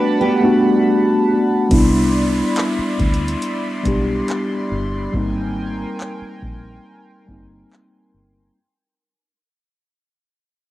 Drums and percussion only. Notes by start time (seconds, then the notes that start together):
1.71 kick, closed hi-hat
2.56 clap, closed hi-hat
2.99 kick, closed hi-hat
3.14 closed hi-hat
3.28 closed hi-hat
3.42 closed hi-hat
3.85 kick, closed hi-hat
4.28 clap, closed hi-hat
5.14 kick
6.01 clap
6.42 kick
7.28 kick
7.73 clap